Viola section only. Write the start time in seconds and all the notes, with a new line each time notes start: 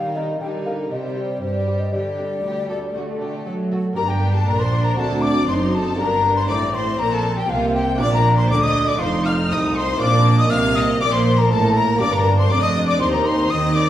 Already playing: G3
0.42 G3
0.92 G3
1.42 G3
1.93 G3
2.95 A3
3.96 D4
5.48 D#4
5.99 D4
6.49 C4
7.49 A#3
7.99 D4
9.00 D#4
10.01 D4
10.51 A#3
11.01 A#3
12.01 D4
12.50 D4
13.01 D#4
13.51 C4